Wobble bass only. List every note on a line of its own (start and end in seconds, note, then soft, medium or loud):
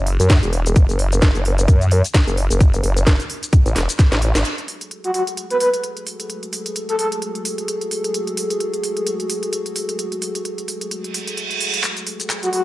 0.00 0.18 F#1 loud
0.20 0.41 F#2 medium
0.43 0.74 E1 medium
0.76 0.87 F#1 loud
0.89 1.21 F#1 loud
1.22 1.33 F#1 loud
1.35 1.67 F#1 loud
1.68 2.02 F#2 loud
2.27 2.48 F#1 medium
2.50 2.82 F#1 medium
2.84 3.05 F#1 loud
3.07 3.18 F#1 loud
3.66 3.74 A1 loud
3.76 3.87 E1 loud
4.12 4.33 A1 medium
4.35 4.44 G#1 medium